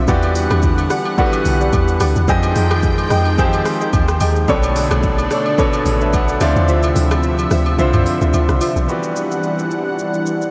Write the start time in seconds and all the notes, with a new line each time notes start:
Already playing: D3
0.08 E2 D3 E3 G3 B3 F#4 G4 D5 F#5, kick, shaker
0.23 high agogo, shaker
0.35 open hi-hat, shaker
0.50 E2, cross-stick, high agogo, shaker
0.62 kick, shaker
0.78 high agogo, shaker
0.90 G4 D5 F#5, cross-stick, open hi-hat, shaker
1.05 high agogo
1.18 E3 B3 F#4 G4 A4 D5 F#5, kick, shaker
1.26 B4
1.33 high agogo, shaker
1.45 B1, open hi-hat, shaker
1.60 G4 D5 F#5, shaker
1.73 E2, kick, high agogo, shaker
1.88 shaker
2.00 D2 G4 D5 F#5, cross-stick, open hi-hat, high agogo, shaker
2.16 E2, shaker
2.27 F2 D#3 F3 G#3 C4 G4 G#4 D#5 G5, kick, shaker
2.43 high agogo, shaker
2.55 F2, open hi-hat, shaker
2.71 cross-stick, high agogo, shaker
2.83 kick, shaker
2.98 high agogo, shaker
3.10 F2 G#4 D#5 G5, cross-stick, open hi-hat, shaker
3.25 high agogo
3.38 F3 C4 G4 G#4 C5 D#5 G5, kick, shaker
3.53 high agogo, shaker
3.66 cross-stick, open hi-hat, shaker
3.81 G#4 D#5 G5, shaker
3.93 D#2, kick, high agogo, shaker
4.08 cross-stick, shaker
4.20 D#2 G#4 D#5 G5, open hi-hat, high agogo, shaker
4.36 shaker
4.48 B1 B2 D3 A3 B3 D4 A4 C#5 D5, kick, shaker
4.63 high agogo, shaker
4.76 open hi-hat, shaker
4.91 B1, cross-stick, high agogo, shaker
5.03 kick, shaker
5.18 high agogo, shaker
5.31 A4 C#5 D5, cross-stick, open hi-hat, shaker
5.46 high agogo
5.58 B2 B3 D4 A4 C#5 D5, kick, shaker
5.73 high agogo, shaker
5.86 A1, open hi-hat, shaker
6.01 A4 B4 C#5 D5 E5, shaker
6.13 B1 C#5 F#5, kick, high agogo, shaker
6.28 A4 D5, shaker
6.41 D2 C3 D3 F3 C4 E4 F4 C5 D5 E5, cross-stick, open hi-hat, high agogo, shaker
6.56 E2, shaker
6.68 D2 F4 C5 E5, shaker
6.83 high agogo, shaker
6.96 D2, open hi-hat, shaker
7.11 cross-stick, high agogo, shaker
7.23 shaker
7.39 high agogo, shaker
7.51 D2 F4 C5 E5, cross-stick, open hi-hat, shaker
7.66 high agogo
7.78 C2 D3 C4 E4 F4 C5 E5, shaker
7.93 C2, mid tom, high agogo, shaker
8.06 open hi-hat, shaker
8.21 D2 F4 C5 E5, shaker
8.34 D2, high agogo, shaker
8.49 C2, cross-stick, shaker
8.61 F4 C5 E5, open hi-hat, high agogo, shaker
8.76 B1, shaker
8.88 E3 G3 B3 D4 F#4 G4 D5 F#5, shaker
9.03 shaker
9.16 shaker
9.31 shaker
9.43 shaker
9.59 shaker
9.71 shaker
9.99 shaker
10.14 shaker
10.26 shaker
10.42 shaker